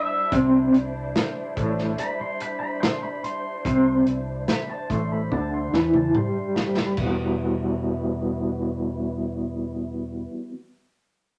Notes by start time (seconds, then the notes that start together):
Already playing: G3 D4 E4 C5 E5
0.32 C2 C3 C4 C5, kick, closed hi-hat
0.73 C2 C3, closed hi-hat
1.16 snare, closed hi-hat
1.57 A1 A2 A3, kick, closed hi-hat
1.78 snare
1.98 B5, muted fingered electric bass stroke, muted clean electric guitar stroke, closed hi-hat
2.21 C6
2.40 B5, closed hi-hat
2.60 B5
2.81 C6, snare, closed hi-hat
3.03 B5
3.24 C6, closed hi-hat
3.65 C2 C3 C4, kick, closed hi-hat
4.06 C2 C3, closed hi-hat
4.48 B5, snare, closed hi-hat
4.69 A5
4.90 A1 A2 A3 C6, kick, closed hi-hat
5.12 B5
5.32 D2 D3 D4 A5, kick
5.54 C6
5.72 E2 E3 E4 B5, snare
5.94 A5, mid tom
6.14 G2 G3 G4 C6, mid tom
6.55 B5, snare
6.77 snare
6.97 E1 E3 G3 E4 F#4 B4, kick, crash
7.01 B3 F#4